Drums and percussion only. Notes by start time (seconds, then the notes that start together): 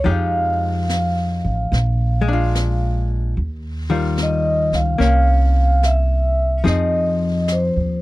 0.05 brush sweep
0.89 snare, hi-hat pedal
1.73 brush sweep, snare
2.55 snare, hi-hat pedal
3.36 brush sweep
4.17 snare, hi-hat pedal
4.73 snare
5.01 brush sweep, snare
5.83 snare, hi-hat pedal
6.66 brush sweep, snare
7.48 snare, hi-hat pedal